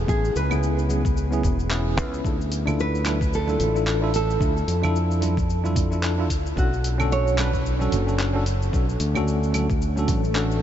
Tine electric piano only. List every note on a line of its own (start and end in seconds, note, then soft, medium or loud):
0.07 0.20 B3 medium
0.07 0.20 C#4 medium
0.07 0.20 E4 medium
0.07 0.21 G#4 medium
0.50 0.86 B3 medium
0.50 0.87 C#4 medium
0.50 0.87 E4 medium
0.50 0.87 G#4 medium
0.89 1.01 B3 medium
0.89 1.01 C#4 medium
0.89 1.02 E4 medium
0.89 1.02 G#4 medium
1.31 1.55 B3 medium
1.31 1.55 C#4 medium
1.31 1.56 E4 medium
1.31 1.56 G#4 medium
1.70 1.94 B3 medium
1.70 1.95 C#4 medium
1.70 1.95 E4 medium
1.70 1.96 G#4 medium
1.97 2.21 B3 medium
1.97 2.22 C#4 medium
1.97 2.22 E4 medium
1.97 2.23 B4 medium
2.24 2.36 D4 medium
2.24 2.37 E4 medium
2.24 2.37 F4 medium
2.24 2.38 A4 medium
2.66 3.02 D4 medium
2.66 3.03 E4 medium
2.66 3.03 F4 medium
2.66 3.04 A4 medium
3.05 3.17 D4 medium
3.05 3.18 E4 medium
3.05 3.18 F4 medium
3.05 3.19 A4 medium
3.47 3.71 D4 medium
3.47 3.72 E4 medium
3.47 3.72 F4 medium
3.47 3.72 A4 loud
3.74 3.98 D4 medium
3.74 3.99 E4 medium
3.74 3.99 F4 medium
3.74 3.99 A4 medium
4.01 4.11 D4 medium
4.01 4.11 E4 medium
4.01 4.12 F4 medium
4.01 4.12 A4 loud
4.40 4.52 D4 medium
4.40 4.53 E4 medium
4.40 4.53 F4 medium
4.40 4.53 A4 medium
4.82 5.19 D4 medium
4.82 5.19 E4 medium
4.82 5.19 F4 medium
4.82 5.20 A4 loud
5.21 5.34 D4 medium
5.21 5.34 E4 medium
5.21 5.34 F4 medium
5.21 5.35 A4 medium
5.64 5.87 D4 medium
5.64 5.88 E4 medium
5.64 5.88 F4 medium
5.64 5.89 A4 loud
5.91 6.15 D4 medium
5.91 6.15 E4 medium
5.91 6.15 F4 medium
5.91 6.16 A4 medium
6.18 6.27 D4 medium
6.18 6.28 E4 medium
6.18 6.28 F4 medium
6.18 6.28 A4 medium
6.56 6.69 C#4 medium
6.56 6.69 D4 medium
6.56 6.69 F#4 medium
6.56 6.70 A4 medium
6.98 7.35 C#4 medium
6.98 7.35 D4 medium
6.98 7.36 F#4 medium
6.98 7.36 A4 loud
7.36 7.49 C#4 medium
7.36 7.50 D4 medium
7.36 7.50 F#4 medium
7.36 7.51 A4 medium
7.79 8.03 C#4 medium
7.79 8.04 D4 medium
7.79 8.04 F#4 medium
7.79 8.05 A4 loud
8.06 8.30 C#4 medium
8.06 8.31 D4 medium
8.06 8.31 F#4 medium
8.06 8.32 A4 medium
8.33 8.43 C#4 medium
8.33 8.43 D4 medium
8.33 8.44 F#4 medium
8.33 8.44 A4 loud
8.72 8.85 C#4 medium
8.72 8.85 D4 medium
8.72 8.85 F#4 medium
8.72 8.86 A4 medium
9.15 9.51 C#4 medium
9.15 9.51 D4 medium
9.15 9.52 F#4 medium
9.15 9.52 A4 loud
9.53 9.66 C#4 medium
9.53 9.66 D4 medium
9.53 9.66 F#4 medium
9.53 9.67 A4 medium
9.96 10.20 C#4 medium
9.96 10.20 D4 medium
9.96 10.21 F#4 medium
9.96 10.21 A4 loud
10.34 10.59 C#4 medium
10.34 10.60 D4 medium
10.34 10.60 F#4 medium
10.34 10.60 A4 medium